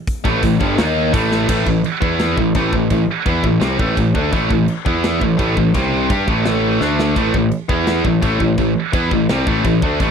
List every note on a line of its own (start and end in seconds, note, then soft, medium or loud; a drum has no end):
0.07 kick loud
0.07 open hi-hat medium
0.24 0.42 A1 medium
0.24 0.41 A2 medium
0.24 0.41 E3 medium
0.24 0.43 A3 medium
0.24 kick loud
0.42 0.60 A1 medium
0.42 0.57 A2 medium
0.42 0.57 E3 medium
0.42 kick medium
0.42 open hi-hat medium
0.60 0.77 G1 medium
0.60 0.77 G2 medium
0.60 0.77 D3 medium
0.60 0.78 G3 loud
0.60 kick loud
0.77 1.12 D#2 medium
0.77 1.12 D#3 medium
0.77 1.13 A#3 medium
0.77 1.13 D#4 medium
0.77 snare loud
0.77 open hi-hat medium
1.13 1.47 A1 medium
1.13 1.47 A2 loud
1.13 1.47 E3 medium
1.13 1.48 A3 medium
1.13 kick loud
1.13 open hi-hat medium
1.32 snare medium
1.48 1.65 A1 medium
1.48 1.64 A2 medium
1.48 1.65 E3 medium
1.48 1.67 A3 loud
1.48 kick loud
1.48 crash loud
1.48 china medium
1.66 1.83 A1 medium
1.66 1.81 A2 medium
1.66 1.81 E3 medium
1.66 kick medium
1.84 china medium
2.01 2.35 E2 medium
2.01 2.36 E3 medium
2.01 2.37 B3 medium
2.01 2.37 E4 medium
2.01 kick loud
2.19 snare loud
2.19 china medium
2.37 2.54 A1 medium
2.37 2.52 A2 medium
2.37 2.52 E3 medium
2.37 kick medium
2.54 2.72 A1 medium
2.54 2.72 A2 medium
2.54 2.73 E3 medium
2.54 2.73 A3 medium
2.54 kick loud
2.54 china medium
2.72 2.89 A1 medium
2.72 2.87 A2 medium
2.72 2.88 E3 medium
2.72 kick medium
2.90 3.07 A1 medium
2.90 3.06 A2 medium
2.90 3.06 E3 medium
2.90 kick medium
2.90 china medium
3.26 3.43 E2 medium
3.26 3.43 E3 medium
3.26 3.44 B3 medium
3.26 3.44 E4 medium
3.26 kick loud
3.26 china medium
3.44 3.60 A1 medium
3.44 3.58 A2 medium
3.44 3.58 E3 medium
3.44 kick medium
3.61 3.78 C2 medium
3.61 3.79 C3 medium
3.61 3.79 G3 medium
3.61 3.79 C4 medium
3.61 snare medium
3.61 china soft
3.79 3.96 A1 medium
3.79 3.96 A2 medium
3.79 3.96 E3 medium
3.79 3.97 A3 loud
3.79 kick loud
3.97 4.14 A1 medium
3.97 4.12 A2 medium
3.97 4.12 E3 medium
3.97 kick medium
3.97 china medium
4.14 4.32 D2 medium
4.14 4.31 D3 medium
4.14 4.31 A3 medium
4.14 4.33 D4 medium
4.14 kick loud
4.31 4.49 A1 medium
4.31 4.49 A2 medium
4.31 4.49 E3 medium
4.31 4.50 A3 medium
4.31 kick medium
4.31 china medium
4.50 4.67 A1 medium
4.50 4.64 A2 medium
4.50 4.65 E3 medium
4.50 kick medium
4.68 china medium
4.85 5.19 E2 medium
4.85 5.19 E3 medium
4.85 5.19 B3 medium
4.85 5.21 E4 loud
4.85 kick loud
5.04 snare loud
5.04 china medium
5.19 5.38 A1 medium
5.19 5.35 A2 medium
5.19 5.35 E3 medium
5.19 kick medium
5.37 5.56 A1 medium
5.37 5.55 A2 medium
5.37 5.55 E3 medium
5.37 5.56 A3 medium
5.37 kick loud
5.37 china medium
5.56 5.73 A1 medium
5.56 5.74 A2 medium
5.56 5.74 E3 medium
5.56 kick medium
5.74 6.08 C2 medium
5.74 6.09 C3 medium
5.74 6.09 G3 medium
5.74 6.10 C4 medium
5.74 kick loud
5.74 china medium
6.10 6.27 G2 medium
6.10 6.27 G3 medium
6.10 6.28 D4 medium
6.10 6.28 G4 medium
6.10 kick loud
6.10 china medium
6.28 6.77 A1 medium
6.28 6.80 A2 medium
6.28 6.81 E3 medium
6.28 6.81 A3 loud
6.28 kick loud
6.45 snare loud
6.45 china soft
6.81 7.14 D2 medium
6.81 7.16 D3 medium
6.81 7.16 A3 loud
6.81 7.16 D4 loud
6.81 snare medium
6.99 snare medium
7.16 7.33 A1 medium
7.16 7.33 A2 medium
7.16 7.34 E3 medium
7.16 7.35 A3 medium
7.16 kick loud
7.16 china medium
7.34 7.51 A1 medium
7.34 7.49 A2 medium
7.34 7.49 E3 medium
7.34 kick medium
7.51 china medium
7.69 8.02 E2 medium
7.69 8.04 E3 medium
7.69 8.05 B3 medium
7.69 8.05 E4 medium
7.69 kick loud
7.87 snare medium
7.87 china medium
8.04 8.21 A1 medium
8.04 8.19 A2 medium
8.04 8.20 E3 medium
8.04 kick medium
8.22 8.39 A1 medium
8.22 8.39 A2 loud
8.22 8.39 E3 medium
8.22 8.40 A3 medium
8.22 kick loud
8.22 china medium
8.40 8.57 A1 medium
8.40 8.55 A2 medium
8.40 8.55 E3 medium
8.40 kick medium
8.58 8.75 A1 medium
8.58 8.73 A2 medium
8.58 8.73 E3 medium
8.58 kick medium
8.58 china medium
8.93 9.10 E2 medium
8.93 9.10 E3 medium
8.93 9.11 B3 medium
8.93 9.11 E4 loud
8.93 kick loud
8.93 china medium
9.11 9.28 A1 medium
9.11 9.26 A2 medium
9.11 9.26 E3 medium
9.11 kick medium
9.29 9.46 C2 medium
9.29 9.46 C3 medium
9.29 9.47 G3 medium
9.29 9.47 C4 medium
9.29 snare loud
9.29 china soft
9.47 9.64 A1 medium
9.47 9.64 A2 medium
9.47 9.65 E3 medium
9.47 9.64 A3 medium
9.47 kick loud
9.64 9.81 A1 medium
9.64 9.79 A2 medium
9.64 9.79 E3 medium
9.64 kick medium
9.64 china medium
9.82 9.99 D2 medium
9.82 10.00 D3 medium
9.82 10.00 A3 loud
9.82 10.00 D4 medium
9.82 kick loud
10.00 10.11 A1 medium
10.00 10.11 A2 medium
10.00 10.11 E3 medium
10.00 10.11 A3 medium
10.00 kick loud
10.00 china medium